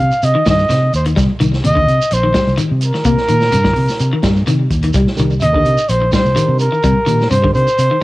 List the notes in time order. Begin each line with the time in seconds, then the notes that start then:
Already playing: F5
0.12 shekere
0.23 C3 D#5, closed hi-hat, shekere
0.35 D#3
0.46 G2 D#3 D#5, kick, snare, closed hi-hat, shekere
0.59 shekere
0.69 C3, muted clean electric guitar stroke, snare, closed hi-hat, shekere
0.93 D#2 C5, closed hi-hat, shekere
1.05 D#3, closed hi-hat, shekere
1.16 C2 G3, kick, snare, closed hi-hat, shekere
1.40 C2 D#3, closed hi-hat, shekere
1.53 snare, shekere
1.64 D#2 C3 D#5, closed hi-hat, shekere
1.75 D3, kick
1.88 C3, closed hi-hat, shekere
2.02 shekere
2.11 A#1 C5, closed hi-hat, shekere
2.23 D#3
2.34 G3, kick, snare, closed hi-hat, shekere
2.47 C2, shekere
2.57 D#3, closed hi-hat, shekere
2.71 C3
2.81 A#4, closed hi-hat, shekere
2.94 D#3, snare, shekere
3.04 C3 A#3, kick, closed hi-hat, shekere
3.17 snare
3.28 A#2 D#3, closed hi-hat, shekere
3.41 snare, shekere
3.52 G2 C3, closed hi-hat, shekere
3.64 D3, kick, snare
3.76 C3, open hi-hat, shekere
3.88 snare, shekere
3.99 C3, closed hi-hat, shekere
4.13 D#3
4.23 G2 G3, kick, snare, closed hi-hat, shekere
4.36 shekere
4.47 C3 D#3, closed hi-hat, shekere
4.71 D#2, kick, closed hi-hat, shekere
4.83 D#3, closed hi-hat, shekere
4.94 C2 G3, kick, closed hi-hat, shekere
5.07 snare
5.17 C2 D#3 D4 D#4 G4 A#4, closed hi-hat, shekere
5.31 shekere
5.41 D#2 C3 D#5, closed hi-hat, shekere
5.53 D3 D4 D#4 G4 A#4, kick
5.65 C3, closed hi-hat, shekere
5.78 shekere
5.89 A#1 C5, closed hi-hat, shekere
6.02 muted clean electric guitar stroke
6.12 G3 D4 D#4 G4 C5, kick, snare, closed hi-hat, shekere
6.25 C2, shekere
6.35 D#3 D4 D#4 G4 A#4, closed hi-hat, shekere
6.48 C3
6.59 A#4, closed hi-hat, shekere
6.72 D#3, shekere
6.83 C3 G3, kick, closed hi-hat, shekere
7.06 A#2 D#3 D4 D#4 G4 A#4, closed hi-hat, shekere
7.20 snare, shekere
7.30 G2 C3 C5, closed hi-hat, shekere
7.42 D3 D4 D#4 G4 A#4, kick
7.54 C3 C5, closed hi-hat, shekere
7.67 shekere
7.78 C3, closed hi-hat, shekere
7.91 D#3